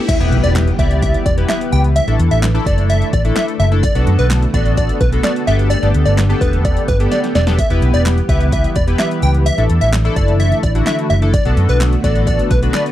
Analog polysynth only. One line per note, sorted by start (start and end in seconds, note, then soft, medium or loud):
0.20 0.69 B3 medium
0.20 0.69 E4 medium
0.20 0.70 G4 medium
0.20 0.70 B4 medium
0.79 1.28 B3 medium
0.79 1.28 E4 medium
0.79 1.28 G4 medium
0.79 1.28 D5 medium
1.37 1.96 B3 medium
1.37 1.96 E4 medium
1.37 1.96 G4 medium
1.37 1.96 B4 medium
2.07 2.47 A3 medium
2.07 2.47 D4 medium
2.07 2.47 E4 medium
2.07 2.47 A4 medium
2.54 3.14 A3 medium
2.54 3.14 D4 medium
2.54 3.14 E4 medium
2.54 3.14 A4 loud
3.24 3.64 A3 medium
3.24 3.64 D4 medium
3.24 3.64 E4 medium
3.24 3.64 A4 medium
3.71 3.83 A3 medium
3.71 3.83 D4 medium
3.71 3.83 E4 medium
3.71 3.83 A4 medium
3.95 4.44 B3 medium
3.95 4.45 D4 medium
3.95 4.45 F#4 medium
3.95 4.45 A4 medium
4.54 5.03 B3 medium
4.54 5.03 D4 medium
4.54 5.03 F#4 medium
4.54 5.03 A4 medium
5.12 5.46 B3 medium
5.12 5.46 D4 medium
5.12 5.48 F#4 medium
5.12 5.47 A4 medium
5.47 5.77 B3 medium
5.47 5.77 D4 medium
5.47 5.77 G4 medium
5.47 5.77 A4 medium
5.82 6.22 B3 medium
5.82 6.22 D4 medium
5.82 6.22 G4 medium
5.82 6.22 A4 medium
6.29 6.89 B3 medium
6.29 6.89 D4 medium
6.29 6.89 G4 medium
6.29 6.89 A4 medium
7.00 7.39 B3 medium
7.00 7.39 D4 medium
7.00 7.39 G4 medium
7.00 7.39 A4 medium
7.47 7.58 B3 medium
7.47 7.58 D4 medium
7.47 7.59 G4 medium
7.47 7.59 A4 medium
7.70 8.19 B3 medium
7.70 8.20 E4 medium
7.70 8.20 G4 medium
7.70 8.20 B4 medium
8.29 8.78 B3 medium
8.29 8.78 E4 medium
8.29 8.78 G4 medium
8.29 8.78 B4 medium
8.87 9.46 B3 medium
8.87 9.46 E4 medium
8.87 9.46 G4 medium
8.87 9.46 B4 medium
9.58 9.97 A3 medium
9.58 9.97 D4 medium
9.58 9.97 E4 medium
9.58 9.97 A4 medium
10.04 10.64 A3 medium
10.04 10.64 D4 medium
10.04 10.64 E4 medium
10.04 10.64 A4 loud
10.75 11.14 A3 medium
10.75 11.14 D4 medium
10.75 11.14 E4 medium
10.75 11.15 F#4 medium
11.22 11.33 A3 medium
11.22 11.34 D4 medium
11.22 11.34 E4 medium
11.22 11.34 A4 loud
11.45 11.94 B3 medium
11.45 11.95 D4 medium
11.45 11.95 F#4 medium
11.45 11.95 A4 medium
12.04 12.53 B3 medium
12.04 12.53 D4 medium
12.04 12.53 F#4 medium
12.04 12.53 A4 medium
12.62 12.92 B3 medium
12.62 12.92 D4 medium
12.62 12.92 F#4 medium
12.62 12.92 B4 medium